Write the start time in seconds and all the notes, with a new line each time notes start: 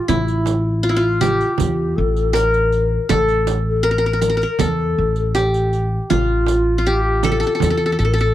Already playing: F4 G4
0.08 A1 E4, riq, frame drum
0.28 riq
0.46 riq, frame drum
0.83 F4
0.89 E4
0.96 F4
1.21 G4, riq, frame drum
1.41 riq
1.58 E2, riq, frame drum
1.96 A1 A4
2.16 riq
2.33 A#4, riq, frame drum
2.54 riq
2.72 riq
3.09 A1 A4, riq, frame drum
3.28 riq
3.47 riq, frame drum
3.68 A4
3.83 A#4
3.91 A#4
3.98 A#4
4.06 A#4
4.13 A#4
4.21 A#4, riq
4.30 A#4
4.37 A#4
4.42 A#4, riq
4.59 E2 A4, riq, frame drum
4.98 A1
5.16 A4, riq
5.29 A4
5.35 G4, riq, frame drum
5.54 riq
5.73 riq
6.10 A1 F4, riq, frame drum
6.47 riq, frame drum
6.78 F4
6.86 G4, riq
7.23 A4, riq, frame drum
7.32 A4
7.40 A4, riq
7.47 A4
7.55 A4
7.60 E2 A4, riq, frame drum
7.70 A4
7.77 A4
7.86 A4
7.92 A4
7.99 A1 A4, riq
8.05 A4 A#4
8.14 A4
8.18 A4, riq
8.31 A4